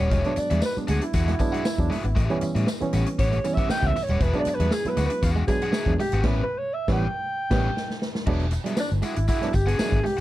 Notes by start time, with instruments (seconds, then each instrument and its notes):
Already playing: alto saxophone C#5
0.00 fingered electric bass D#1, clean electric guitar G3, overdriven electric guitar C#4 G4 B4 F#5, reed electric piano C#4
0.10 fingered electric bass E1, clean electric guitar G#3, overdriven electric guitar D4 F#4 G#4 E5, kick, closed hi-hat, tambourine
0.24 reed electric piano F#3 G#3 B3 D4, closed hi-hat
0.36 alto saxophone D5, muted overdriven electric guitar stroke, muted fingered electric bass stroke, muted clean electric guitar stroke, closed hi-hat, tambourine
0.50 fingered electric bass E2, clean electric guitar G3, overdriven electric guitar D4 F#4 G#4 E5, closed hi-hat
0.62 alto saxophone B4, muted overdriven electric guitar stroke, snare, tambourine
0.76 reed electric piano F#3 G#3 B3 D4, muted fingered electric bass stroke, closed hi-hat
0.87 fingered electric bass D2, clean electric guitar G#3, overdriven electric guitar D4 F#4 G#4 F#5, alto saxophone G#4, closed hi-hat, tambourine
1.01 alto saxophone E4, muted overdriven electric guitar stroke, closed hi-hat
1.13 fingered electric bass E2, overdriven electric guitar D4 F#4 G#4 F#5, kick, closed hi-hat, tambourine
1.27 clean electric guitar G#3, snare, closed hi-hat
1.39 reed electric piano F#3 G#3 B3 D4, muted overdriven electric guitar stroke, kick, closed hi-hat, tambourine
1.52 clean electric guitar B3, overdriven electric guitar D4 F#4 G#4 F#5, closed hi-hat
1.64 muted overdriven electric guitar stroke, muted clean electric guitar stroke, snare, tambourine
1.78 fingered electric bass E2, reed electric piano F#3 G#3 B3 D4, kick, closed hi-hat
1.90 clean electric guitar G#3, overdriven electric guitar D4 F#4 G#4 E5, snare, open hi-hat
2.04 fingered electric bass G#1, reed electric piano B3 D4, clean electric guitar B3, muted overdriven electric guitar stroke, closed hi-hat
2.15 fingered electric bass A1, clean electric guitar A3, overdriven electric guitar C#4 G4 B4 E5, kick, closed hi-hat, tambourine
2.30 reed electric piano E3 G3 B3 C#4, closed hi-hat
2.41 muted overdriven electric guitar stroke, muted fingered electric bass stroke, muted clean electric guitar stroke, closed hi-hat, tambourine
2.55 fingered electric bass A2, clean electric guitar G3, overdriven electric guitar C#4 G4 B4 E5, closed hi-hat
2.67 muted overdriven electric guitar stroke, snare, tambourine
2.81 reed electric piano E3 G3 B3 C#4, muted fingered electric bass stroke, closed hi-hat
2.93 fingered electric bass A1, clean electric guitar A3, overdriven electric guitar C#4 G4 B4 F#5, closed hi-hat, tambourine
3.06 muted overdriven electric guitar stroke, closed hi-hat
3.19 fingered electric bass A1, overdriven electric guitar C#4 G4 B4 F#5, alto saxophone C#5, kick, closed hi-hat, tambourine
3.32 clean electric guitar A3, closed hi-hat
3.44 reed electric piano E3 G3 B3 C#4, muted clean electric guitar stroke, muted overdriven electric guitar stroke, closed hi-hat, tambourine
3.54 clean electric guitar B3, alto saxophone E5, kick
3.58 overdriven electric guitar C#4 G4 B4 F#5, closed hi-hat
3.69 clean electric guitar A3, overdriven electric guitar C#4 G4 B4 E5, alto saxophone G5, muted fingered electric bass stroke, snare, tambourine
3.83 fingered electric bass C#2, reed electric piano E3 G3 B3 C#4, muted clean electric guitar stroke, kick, closed hi-hat
3.87 alto saxophone E5
3.95 muted overdriven electric guitar stroke, snare, open hi-hat, tambourine
4.03 alto saxophone C#5
4.08 fingered electric bass D#1, clean electric guitar G3, reed electric piano B3 C#4, overdriven electric guitar C#4 G4 B4 F#5, closed hi-hat
4.20 fingered electric bass E1, clean electric guitar G#3, overdriven electric guitar D4 F#4 G#4 E5, alto saxophone B4, kick, closed hi-hat, tambourine
4.33 reed electric piano F#3 G#3 B3 D4, closed hi-hat
4.39 alto saxophone D5
4.45 muted fingered electric bass stroke, muted clean electric guitar stroke, muted overdriven electric guitar stroke, closed hi-hat, tambourine
4.55 alto saxophone B4
4.60 fingered electric bass E2, clean electric guitar G3, overdriven electric guitar D4 F#4 G#4 E5, closed hi-hat
4.71 alto saxophone G#4, muted overdriven electric guitar stroke, snare, tambourine
4.85 reed electric piano F#3 G#3 B3 E4, alto saxophone B4, muted fingered electric bass stroke, closed hi-hat
4.97 fingered electric bass D2, clean electric guitar G#3, overdriven electric guitar D4 F#4 G#4 F#5, closed hi-hat, tambourine
5.06 alto saxophone B4
5.10 muted overdriven electric guitar stroke, closed hi-hat
5.22 fingered electric bass E2, overdriven electric guitar D4 F#4 G#4 F#5, kick, closed hi-hat, tambourine
5.36 clean electric guitar G#3
5.47 reed electric piano F#3 G#3 B3 D4, alto saxophone G#4, muted overdriven electric guitar stroke, muted clean electric guitar stroke, kick, closed hi-hat, tambourine
5.62 clean electric guitar B3, overdriven electric guitar D4 F#4 G#4 F#5, closed hi-hat
5.73 overdriven electric guitar D4 F#4 G#4 E5, muted clean electric guitar stroke, snare, tambourine
5.86 fingered electric bass E2, reed electric piano F#3 G#3 B3 D4, kick, closed hi-hat
5.99 clean electric guitar G#3, alto saxophone G4, muted overdriven electric guitar stroke, snare, open hi-hat, tambourine
6.12 fingered electric bass G#1, reed electric piano B3 D4, clean electric guitar B3, overdriven electric guitar D4 F#4 G#4 F#5, closed hi-hat
6.24 reed electric piano E3 G3 B3 C#4, overdriven electric guitar C#4 G4 B4 E5, alto saxophone B4, kick, snare, crash
6.43 alto saxophone B4
6.58 alto saxophone C#5
6.74 alto saxophone E5
6.88 fingered electric bass A1, reed electric piano E3 G3 B3 C#4, overdriven electric guitar C#4 G4 B4, alto saxophone G5, kick, snare
7.50 fingered electric bass A1, reed electric piano E3 G3 B3 C#4, overdriven electric guitar C#4 G4 B4, kick, snare, crash
7.77 snare
7.90 snare
8.02 snare
8.15 snare
8.27 fingered electric bass E1, reed electric piano F#3 G#3 B3 D4, clean electric guitar G#3, overdriven electric guitar D4 F#4 G#4 E5, kick, crash
8.40 closed hi-hat
8.51 reed electric piano B3 D4, muted overdriven electric guitar stroke, muted clean electric guitar stroke, closed hi-hat, tambourine
8.64 reed electric piano F#3 G#3 B3 D4, clean electric guitar G3, overdriven electric guitar D4 F#4 G#4 E5, closed hi-hat
8.77 alto saxophone D4, muted overdriven electric guitar stroke, snare, tambourine
8.91 fingered electric bass G1, reed electric piano B3 D4, closed hi-hat
9.02 clean electric guitar G#3, overdriven electric guitar D4 F#4 G#4 F#5, alto saxophone E4, closed hi-hat, tambourine
9.16 fingered electric bass G#1, muted overdriven electric guitar stroke, closed hi-hat
9.28 overdriven electric guitar D4 F#4 G#4 F#5, alto saxophone E4, kick, closed hi-hat, tambourine
9.41 reed electric piano F#3 G#3 B3 D4, clean electric guitar G#3, snare, closed hi-hat
9.53 fingered electric bass G1, alto saxophone G4, muted overdriven electric guitar stroke, muted clean electric guitar stroke, kick, closed hi-hat, tambourine
9.66 clean electric guitar B3, reed electric piano B3 D4, overdriven electric guitar D4 F#4 G#4 F#5, alto saxophone G#4, closed hi-hat
9.78 reed electric piano F#3 G#3 B3 D4, overdriven electric guitar D4 F#4 G#4 E5, muted clean electric guitar stroke, snare, tambourine
9.92 fingered electric bass G#1, kick, closed hi-hat
10.04 clean electric guitar G#3, alto saxophone G4, muted overdriven electric guitar stroke, snare, open hi-hat
10.17 overdriven electric guitar F#5